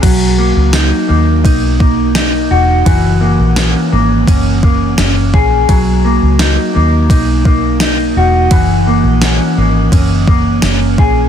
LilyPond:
<<
  \new Staff \with { instrumentName = "Clean electric guitar" } { \time 4/4 \key b \major \tempo 4 = 85 fis8 ais8 dis'8 ais8 dis'8 ais8 dis'8 fis'8 | e8 ais8 cis'8 ais8 cis'8 ais8 cis'8 gis'8 | fis8 ais8 dis'8 ais8 dis'8 ais8 dis'8 fis'8 | e8 ais8 cis'8 ais8 cis'8 ais8 cis'8 gis'8 | }
  \new Staff \with { instrumentName = "Fingered electric bass" } { \clef bass \time 4/4 \key b \major b,,8. cis,8 r16 dis,8 b,,4. e,,8 | fis,,8. ais,,8 r16 gis,,8 fis,,4 fis,,8 ais,,8 | b,,8. cis,8 r16 dis,8 b,,4. e,,8 | fis,,8. ais,,8 r16 gis,,8 fis,,4 fis,,8 ais,,8 | }
  \new DrumStaff \with { instrumentName = "Drums" } \drummode { \time 4/4 <cymc bd cymr>4 <cymr sn tamb>4 <bd cymr>8 bd8 <cymr sn tamb>4 | <bd cymr>4 <cymr sn tamb>4 <bd cymr>8 bd8 <cymr sn tamb>8 bd8 | <bd cymr>4 <cymr sn tamb>4 <bd cymr>8 bd8 <cymr sn tamb>4 | <bd cymr>4 <cymr sn tamb>4 <bd cymr>8 bd8 <cymr sn tamb>8 bd8 | }
>>